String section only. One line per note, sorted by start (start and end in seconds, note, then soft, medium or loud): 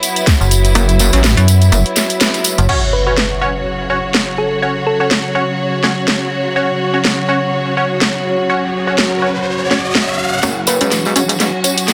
0.00 2.65 F#3 medium
0.00 2.65 B3 medium
0.00 2.68 E4 medium
2.69 10.39 C#3 medium
2.69 10.39 F#3 medium
2.69 10.39 F#4 medium
2.69 10.39 C#5 medium
10.43 11.93 F#3 medium
10.43 11.93 C#4 medium
10.43 11.93 F#4 medium